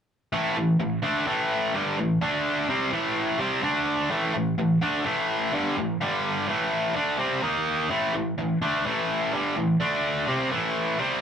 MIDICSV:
0, 0, Header, 1, 2, 480
1, 0, Start_track
1, 0, Tempo, 473560
1, 342, Time_signature, 4, 2, 24, 8
1, 11363, End_track
2, 0, Start_track
2, 0, Title_t, "Overdriven electric guitar"
2, 0, Program_c, 0, 29
2, 328, Note_on_c, 0, 45, 88
2, 332, Note_on_c, 0, 52, 88
2, 333, Note_on_c, 0, 57, 105
2, 559, Note_off_c, 0, 45, 0
2, 564, Note_off_c, 0, 52, 0
2, 569, Note_off_c, 0, 57, 0
2, 571, Note_on_c, 0, 45, 50
2, 577, Note_on_c, 0, 52, 68
2, 767, Note_off_c, 0, 45, 0
2, 770, Note_off_c, 0, 52, 0
2, 809, Note_on_c, 0, 45, 48
2, 813, Note_on_c, 0, 52, 54
2, 1006, Note_off_c, 0, 45, 0
2, 1008, Note_off_c, 0, 52, 0
2, 1041, Note_on_c, 0, 50, 85
2, 1047, Note_on_c, 0, 57, 102
2, 1053, Note_on_c, 0, 62, 98
2, 1277, Note_off_c, 0, 57, 0
2, 1278, Note_off_c, 0, 50, 0
2, 1282, Note_on_c, 0, 45, 84
2, 1285, Note_off_c, 0, 62, 0
2, 1286, Note_on_c, 0, 52, 93
2, 1289, Note_on_c, 0, 57, 93
2, 1762, Note_off_c, 0, 45, 0
2, 1764, Note_off_c, 0, 52, 0
2, 1765, Note_off_c, 0, 57, 0
2, 1765, Note_on_c, 0, 43, 79
2, 1774, Note_on_c, 0, 50, 82
2, 1777, Note_on_c, 0, 55, 76
2, 2003, Note_off_c, 0, 43, 0
2, 2008, Note_off_c, 0, 50, 0
2, 2010, Note_off_c, 0, 55, 0
2, 2015, Note_on_c, 0, 45, 61
2, 2020, Note_on_c, 0, 52, 58
2, 2207, Note_off_c, 0, 45, 0
2, 2210, Note_off_c, 0, 52, 0
2, 2243, Note_on_c, 0, 50, 100
2, 2248, Note_on_c, 0, 57, 94
2, 2254, Note_on_c, 0, 62, 112
2, 2719, Note_off_c, 0, 50, 0
2, 2724, Note_off_c, 0, 57, 0
2, 2724, Note_on_c, 0, 48, 69
2, 2727, Note_off_c, 0, 62, 0
2, 2729, Note_on_c, 0, 55, 77
2, 2731, Note_on_c, 0, 60, 72
2, 2957, Note_off_c, 0, 48, 0
2, 2960, Note_off_c, 0, 55, 0
2, 2961, Note_on_c, 0, 45, 97
2, 2964, Note_on_c, 0, 52, 103
2, 2966, Note_off_c, 0, 60, 0
2, 2970, Note_on_c, 0, 57, 89
2, 3432, Note_off_c, 0, 45, 0
2, 3437, Note_on_c, 0, 48, 83
2, 3440, Note_off_c, 0, 52, 0
2, 3444, Note_on_c, 0, 55, 93
2, 3445, Note_off_c, 0, 57, 0
2, 3449, Note_on_c, 0, 60, 85
2, 3671, Note_off_c, 0, 48, 0
2, 3675, Note_on_c, 0, 50, 75
2, 3681, Note_off_c, 0, 55, 0
2, 3682, Note_off_c, 0, 60, 0
2, 3685, Note_on_c, 0, 57, 83
2, 3686, Note_on_c, 0, 62, 89
2, 4152, Note_off_c, 0, 50, 0
2, 4156, Note_off_c, 0, 57, 0
2, 4156, Note_on_c, 0, 45, 98
2, 4162, Note_off_c, 0, 62, 0
2, 4164, Note_on_c, 0, 52, 102
2, 4168, Note_on_c, 0, 57, 101
2, 4388, Note_off_c, 0, 45, 0
2, 4393, Note_off_c, 0, 52, 0
2, 4401, Note_on_c, 0, 45, 51
2, 4403, Note_off_c, 0, 57, 0
2, 4405, Note_on_c, 0, 52, 59
2, 4599, Note_off_c, 0, 45, 0
2, 4601, Note_off_c, 0, 52, 0
2, 4642, Note_on_c, 0, 45, 59
2, 4646, Note_on_c, 0, 52, 60
2, 4840, Note_off_c, 0, 45, 0
2, 4842, Note_off_c, 0, 52, 0
2, 4878, Note_on_c, 0, 50, 81
2, 4884, Note_on_c, 0, 57, 79
2, 4889, Note_on_c, 0, 62, 91
2, 5114, Note_off_c, 0, 57, 0
2, 5116, Note_off_c, 0, 50, 0
2, 5120, Note_on_c, 0, 45, 86
2, 5122, Note_off_c, 0, 62, 0
2, 5122, Note_on_c, 0, 52, 107
2, 5126, Note_on_c, 0, 57, 88
2, 5600, Note_off_c, 0, 45, 0
2, 5601, Note_off_c, 0, 52, 0
2, 5601, Note_on_c, 0, 43, 80
2, 5603, Note_off_c, 0, 57, 0
2, 5604, Note_on_c, 0, 50, 76
2, 5610, Note_on_c, 0, 55, 75
2, 5840, Note_off_c, 0, 43, 0
2, 5842, Note_off_c, 0, 50, 0
2, 5845, Note_off_c, 0, 55, 0
2, 5850, Note_on_c, 0, 45, 64
2, 5854, Note_on_c, 0, 52, 60
2, 6044, Note_off_c, 0, 45, 0
2, 6046, Note_off_c, 0, 52, 0
2, 6088, Note_on_c, 0, 43, 90
2, 6093, Note_on_c, 0, 50, 87
2, 6095, Note_on_c, 0, 55, 99
2, 6564, Note_off_c, 0, 50, 0
2, 6565, Note_off_c, 0, 43, 0
2, 6568, Note_off_c, 0, 55, 0
2, 6568, Note_on_c, 0, 45, 76
2, 6575, Note_on_c, 0, 52, 80
2, 6575, Note_on_c, 0, 57, 81
2, 7040, Note_off_c, 0, 57, 0
2, 7041, Note_off_c, 0, 45, 0
2, 7045, Note_on_c, 0, 50, 80
2, 7048, Note_off_c, 0, 52, 0
2, 7052, Note_on_c, 0, 57, 90
2, 7056, Note_on_c, 0, 62, 100
2, 7281, Note_off_c, 0, 50, 0
2, 7281, Note_off_c, 0, 57, 0
2, 7285, Note_off_c, 0, 62, 0
2, 7285, Note_on_c, 0, 48, 77
2, 7285, Note_on_c, 0, 55, 82
2, 7289, Note_on_c, 0, 60, 90
2, 7524, Note_off_c, 0, 48, 0
2, 7524, Note_off_c, 0, 55, 0
2, 7526, Note_off_c, 0, 60, 0
2, 7529, Note_on_c, 0, 51, 73
2, 7532, Note_on_c, 0, 58, 86
2, 7534, Note_on_c, 0, 63, 88
2, 8003, Note_off_c, 0, 51, 0
2, 8004, Note_off_c, 0, 58, 0
2, 8007, Note_on_c, 0, 45, 96
2, 8009, Note_off_c, 0, 63, 0
2, 8009, Note_on_c, 0, 52, 102
2, 8015, Note_on_c, 0, 57, 103
2, 8240, Note_off_c, 0, 45, 0
2, 8246, Note_off_c, 0, 52, 0
2, 8250, Note_off_c, 0, 57, 0
2, 8253, Note_on_c, 0, 45, 51
2, 8256, Note_on_c, 0, 52, 59
2, 8448, Note_off_c, 0, 45, 0
2, 8450, Note_off_c, 0, 52, 0
2, 8493, Note_on_c, 0, 45, 49
2, 8499, Note_on_c, 0, 52, 58
2, 8688, Note_off_c, 0, 45, 0
2, 8691, Note_off_c, 0, 52, 0
2, 8734, Note_on_c, 0, 50, 84
2, 8738, Note_on_c, 0, 57, 97
2, 8740, Note_on_c, 0, 62, 93
2, 8967, Note_off_c, 0, 50, 0
2, 8971, Note_on_c, 0, 45, 81
2, 8972, Note_off_c, 0, 57, 0
2, 8973, Note_off_c, 0, 62, 0
2, 8978, Note_on_c, 0, 52, 86
2, 8985, Note_on_c, 0, 57, 87
2, 9449, Note_off_c, 0, 45, 0
2, 9453, Note_off_c, 0, 52, 0
2, 9455, Note_on_c, 0, 43, 76
2, 9456, Note_off_c, 0, 57, 0
2, 9459, Note_on_c, 0, 50, 80
2, 9461, Note_on_c, 0, 55, 85
2, 9691, Note_off_c, 0, 43, 0
2, 9693, Note_off_c, 0, 50, 0
2, 9694, Note_off_c, 0, 55, 0
2, 9697, Note_on_c, 0, 45, 56
2, 9700, Note_on_c, 0, 52, 64
2, 9891, Note_off_c, 0, 45, 0
2, 9893, Note_off_c, 0, 52, 0
2, 9934, Note_on_c, 0, 50, 83
2, 9940, Note_on_c, 0, 57, 104
2, 9943, Note_on_c, 0, 62, 103
2, 10411, Note_off_c, 0, 50, 0
2, 10415, Note_off_c, 0, 57, 0
2, 10416, Note_off_c, 0, 62, 0
2, 10416, Note_on_c, 0, 48, 79
2, 10422, Note_on_c, 0, 55, 75
2, 10428, Note_on_c, 0, 60, 84
2, 10653, Note_off_c, 0, 48, 0
2, 10655, Note_off_c, 0, 55, 0
2, 10658, Note_off_c, 0, 60, 0
2, 10662, Note_on_c, 0, 45, 94
2, 10667, Note_on_c, 0, 52, 85
2, 10671, Note_on_c, 0, 57, 96
2, 11136, Note_off_c, 0, 45, 0
2, 11139, Note_off_c, 0, 52, 0
2, 11140, Note_off_c, 0, 57, 0
2, 11142, Note_on_c, 0, 48, 87
2, 11148, Note_on_c, 0, 55, 85
2, 11153, Note_on_c, 0, 60, 103
2, 11363, Note_off_c, 0, 48, 0
2, 11363, Note_off_c, 0, 55, 0
2, 11363, Note_off_c, 0, 60, 0
2, 11363, End_track
0, 0, End_of_file